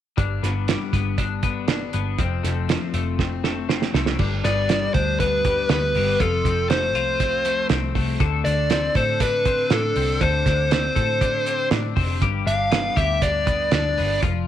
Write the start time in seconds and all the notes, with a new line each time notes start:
0.17 G1 G2 D4, kick, closed hi-hat
0.43 G1 B3, snare, closed hi-hat
0.68 G3, snare, closed hi-hat
0.93 G1 B3, kick, closed hi-hat
1.18 D4, kick, closed hi-hat
1.43 B3, kick, closed hi-hat
1.68 D4, snare, closed hi-hat
1.93 G1 B3, closed hi-hat
2.18 F1 F2 C4, kick, closed hi-hat
2.43 F1 A3, snare, closed hi-hat
2.69 F3, snare, closed hi-hat
2.94 F1 A3, closed hi-hat
3.19 C4, kick, snare
3.44 A3, snare
3.69 C4, snare
3.82 snare
3.94 C2 A3, snare
4.06 snare
4.19 G1 G2 D4, kick, crash
4.44 G1 B3 D5, snare, closed hi-hat
4.69 G3, snare, closed hi-hat
4.94 D2 D4 C5, kick, closed hi-hat
5.20 B3 B4, kick, closed hi-hat
5.45 G3, kick, closed hi-hat
5.69 D2 B3 B4, snare, closed hi-hat
5.95 G1 G3, open hi-hat
6.20 F1 F2 F4 A4, kick, closed hi-hat
6.45 F1 C4, kick, closed hi-hat
6.70 A3 C5, snare, closed hi-hat
6.95 C2 F4, closed hi-hat
7.20 C4, kick, closed hi-hat
7.45 A3, closed hi-hat
7.69 C2 C4, snare, closed hi-hat
7.95 C2 A3, kick, open hi-hat
8.20 D2 D3 A4, kick, closed hi-hat
8.45 D2 D4 D5, closed hi-hat
8.70 C4, snare, closed hi-hat
8.95 A2 A4 C5, kick, closed hi-hat
9.20 D4 B4, kick, closed hi-hat
9.45 C4, kick, closed hi-hat
9.70 A2 D4 A4, snare, closed hi-hat
9.96 C2 C4, open hi-hat
10.21 D2 D3 A4 C5, kick, closed hi-hat
10.46 D2 D4, kick, snare, closed hi-hat
10.71 C4 C5, snare, closed hi-hat
10.96 A2 A4, kick, closed hi-hat
11.21 D4, kick, closed hi-hat
11.46 C4, closed hi-hat
11.71 A2 D4, snare, closed hi-hat
11.96 F1 C4, kick, open hi-hat
12.21 G1 G2 G4, kick, closed hi-hat
12.46 G1 D4 F5, closed hi-hat
12.71 B3, snare, closed hi-hat
12.96 D2 G4 E5, kick, closed hi-hat
13.22 D4 D5, kick, closed hi-hat
13.46 B3, kick, closed hi-hat
13.72 D2 D4 D5, snare, closed hi-hat
13.98 G1 B3, open hi-hat
14.22 F1 F3 F4, kick, closed hi-hat